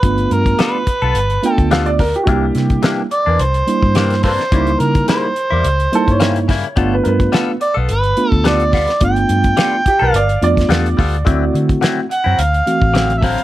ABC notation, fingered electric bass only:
X:1
M:4/4
L:1/16
Q:"Swing 16ths" 1/4=107
K:Gmix
V:1 name="Fingered electric bass" clef=bass
G,,,2 G,,2 z3 B,,, G,,,2 z D,,4- D,, | C,,2 C,2 z3 E,, C,,2 z G,,4- G,, | ^C,,2 ^C,2 z3 E,, C,,2 z G,,4- G,, | G,,,2 G,,2 z3 B,,, G,,,2 z D,,4- D,, |
G,,,2 G,,2 z3 B,,, G,,,2 F,,2 E,,2 D,,2 | D,,2 D,2 z3 ^F,, D,,2 z A,,,4- A,,, |]